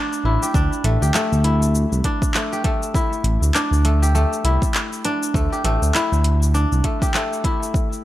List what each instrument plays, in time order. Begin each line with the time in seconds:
Already playing: kora A3 D4 F4 G4
0.13 cabasa
0.24 analog synth bass A1, kora E4
0.42 kora G4, cabasa
0.54 analog synth bass D2, kora D4, kick, cabasa
0.73 cabasa
0.84 analog synth bass A1, kora A3, closed hi-hat
1.01 analog synth bass D2, kora G4, cabasa
1.14 kora A3, clap, cabasa
1.32 analog synth bass D2, cabasa
1.44 kora E4, closed hi-hat
1.62 cabasa
1.75 cabasa
1.92 analog synth bass C2, cabasa
2.04 kora D4, kick, closed hi-hat
2.22 kick, cabasa
2.34 kora A3, clap, cabasa
2.52 kora G4, cabasa
2.64 kora A3, kick, closed hi-hat
2.83 cabasa
2.94 kora E4, kick, cabasa
3.13 cabasa
3.24 analog synth bass A1, closed hi-hat
3.41 analog synth bass D2, cabasa
3.54 kora D4, clap, cabasa
3.71 analog synth bass D2, cabasa
3.85 kora A3, closed hi-hat
4.02 kora G4, cabasa
4.15 kora A3, cabasa
4.33 cabasa
4.44 analog synth bass C2, kora E4, closed hi-hat
4.62 kick, cabasa
4.74 clap, cabasa
4.93 cabasa
5.05 kora D4, closed hi-hat
5.23 cabasa
5.34 analog synth bass D2, kora A3, kick, cabasa
5.52 kora G4, cabasa
5.64 analog synth bass A1, kora A3, closed hi-hat
5.82 analog synth bass D2, cabasa
5.95 kora E4, clap, cabasa
6.12 analog synth bass D2, cabasa
6.24 closed hi-hat
6.43 cabasa
6.54 kora D4, cabasa
6.72 analog synth bass C2, cabasa
6.84 kora A3, kick, closed hi-hat
7.02 kora G4, kick, cabasa
7.14 kora A3, clap, cabasa
7.33 cabasa
7.44 kora E4, kick, closed hi-hat
7.63 cabasa
7.74 kick, cabasa
7.93 cabasa